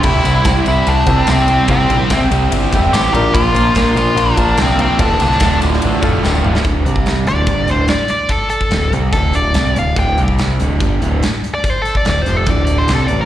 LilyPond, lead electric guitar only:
\new Staff \with { instrumentName = "Lead electric guitar" } { \time 4/4 \key d \minor \tempo 4 = 145 e'4. e'8 d'4 c'4 | c'4. r4. g'8 g'8 | f'4. f'8 d'4 c'8 c'8 | d'4. r2 r8 |
r4. d''4 c''8 d''8 d''8 | a'8 a'4 r8 a'8 d''4 f''8 | g''8 r2 r8 \tuplet 3/2 { r4 d''8 } | \tuplet 3/2 { c''8 a'8 d''8 d''8 c''8 a'8 d''8 d''8 c''8 a'8 d''8 bes'8 } | }